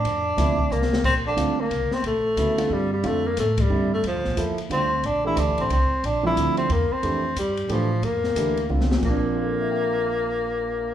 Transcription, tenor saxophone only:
X:1
M:3/4
L:1/16
Q:"Swing" 1/4=181
K:Bblyd
V:1 name="Tenor saxophone"
D8 B,4 | C2 D4 B,4 C2 | A,8 G,2 G,2 | A,2 B,2 A,2 G,4 A,2 |
F,4- F,/2 z3 z/2 C4 | D2 E3/2 C/2 D2 C2 C4 | D2 E4 C2 B,2 C2- | C4 G,4 F,4 |
B,8 z4 | B,12- | B,12 |]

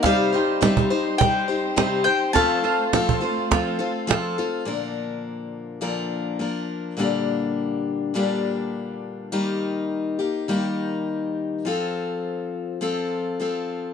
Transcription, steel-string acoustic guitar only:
X:1
M:4/4
L:1/8
Q:1/4=103
K:Bb
V:1 name="Steel-string acoustic guitar"
[C,G,EGc] [EGc] [C,G,EGc] [EGc] [G,EGc] [EGc] [C,G,EGc] [EGc] | [F,CFA] [CFA] [F,CFA] [CFA] [F,CFA] [CFA] [F,CFA] [CFA] | [B,,D,F,B,DB]4 [B,,D,F,B,DB]2 [F,B,DB]2 | [B,,D,G,B,DG]4 [B,,D,G,B,DG]4 |
[E,G,B,EG]3 [B,EG] [E,G,B,EG]4 | [F,CFA]4 [F,CFA]2 [F,CFA]2 |]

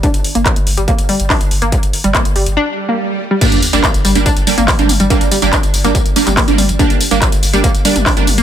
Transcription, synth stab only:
X:1
M:4/4
L:1/16
Q:1/4=142
K:Gm
V:1 name="Synth stab"
z16 | z16 | [G,B,D] z2 [G,B,D] z3 [G,B,D] z2 [G,B,D] z2 [G,B,D] z2 | [G,B,D] z2 [G,B,D] z3 [G,B,D] z2 [G,B,D] z2 [G,B,D] z2 |
[G,B,D] z2 [G,B,D] z3 [G,B,D] z2 [G,B,D] z2 [G,B,D] z2 |]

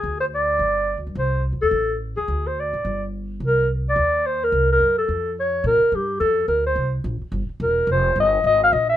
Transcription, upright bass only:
X:1
M:4/4
L:1/8
Q:"Swing" 1/4=214
K:Cm
V:1 name="Upright bass" clef=bass
D,,4 G,,,2- (3G,,, D,, G,, | C,,2- (3C,, E,, =E,, =A,,,3 _E,, | D,,3 A,,, G,,,4 | C,,4 E,,4 |
C,,2 ^F,,2 =F,,4 | B,, z G,,2 F,,2 D,,2 | C,,2 B,,, z G,,, z =E,,,2 | F,,,2 G,,,2 A,,,2 B,,,2 |]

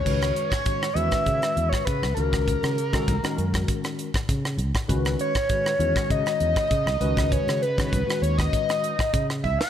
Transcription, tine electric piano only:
X:1
M:4/4
L:1/16
Q:1/4=99
K:C#m
V:1 name="Tine electric piano"
[D,G,CFB]3 z [D,G,CFc] z [D,G,CFB]6 z2 [D,G,CF^A]2- | [D,G,CF^A]2 z [D,G,CF=A] z [D,G,CF^A]6 z4 z | [D,G,CFB]3 z [D,G,CFB] z [D,G,CFc]6 z2 [D,G,CFB]2- | [D,G,CFB]2 z [D,G,CFc] z [D,G,CFB]6 z4 z |]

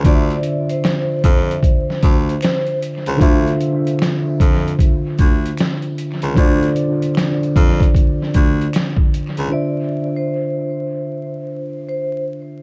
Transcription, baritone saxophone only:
X:1
M:4/4
L:1/16
Q:"Swing 16ths" 1/4=76
K:Dm
V:1 name="Baritone saxophone" clef=bass
D,,2 z4 F,,2 z2 D,,2 z3 ^C,, | D,,2 z4 F,,2 z2 D,,2 z3 ^C,, | D,,2 z4 F,,2 z2 D,,2 z3 ^C,, | z16 |]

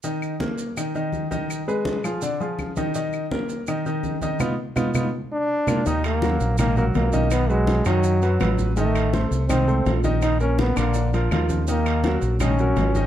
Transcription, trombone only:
X:1
M:4/4
L:1/16
Q:1/4=165
K:Bbphr
V:1 name="Trombone"
z16 | z16 | z16 | z8 z2 =D6 |
[K:Ebm] E2 B,6 B,2 B,2 B,4 | =B,2 A,4 ^F,8 z2 | =A,6 z2 =C4- C z3 | E2 D2 C2 B,4 z6 |
B,6 z2 D8 |]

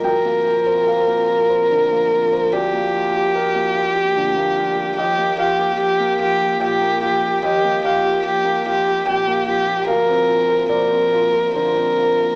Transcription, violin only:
X:1
M:3/4
L:1/8
Q:1/4=73
K:Bbmix
V:1 name="Violin"
B6 | G6 | G G G G G G | G G G G G G |
B2 B2 B2 |]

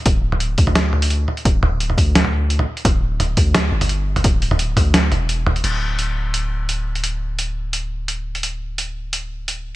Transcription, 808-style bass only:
X:1
M:4/4
L:1/8
Q:1/4=172
K:Cmix
V:1 name="808-style bass" clef=bass
D,,,3 D,,4 z | D,,,3 D,,4 z | D,,,3 D,,2 G,,,3 | D,,,3 D,,2 E,,,3 |
D,,,8- | D,,,8- | D,,,8 |]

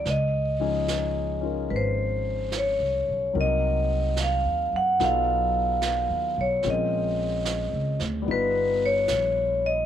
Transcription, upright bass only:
X:1
M:4/4
L:1/8
Q:"Swing" 1/4=73
K:Db
V:1 name="Upright bass" clef=bass
D,,4 A,,,2- (3A,,, C,, _C,, | C,,2- (3C,, E,, G,, =B,,,2- (3B,,, ^D,, B,,, | B,,,2- (3B,,, D,, =D,, =G,,,2 ^A,,,2 |]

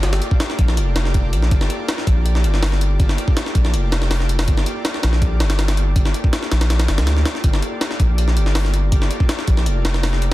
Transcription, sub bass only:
X:1
M:4/4
L:1/16
Q:1/4=162
K:Gm
V:1 name="Sub bass" clef=bass
G,,,2 z4 B,,,2 F,,,6 B,,,2 | G,,,2 z4 B,,,4 G,,,6 | G,,,2 z4 B,,,2 F,,,8 | G,,,2 z4 B,,,4 G,,,6 |
G,,,2 z4 B,,,4 G,,, D,,3 z2 | G,,,2 z4 B,,,4 G,,,6 | G,,,2 z4 B,,,2 F,,,8 |]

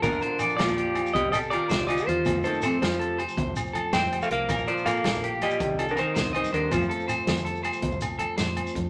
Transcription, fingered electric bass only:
X:1
M:12/8
L:1/8
Q:3/8=108
K:Bb
V:1 name="Fingered electric bass" clef=bass
B,,, z2 B,,,3 C,,3 C,,2 =E,, | F,, z2 F,,3 C,,3 F,,2 C,, | B,,, z2 B,,,3 C,,3 C,,2 E,, | F,, z2 F,,3 C,,3 F,,2 F,, |]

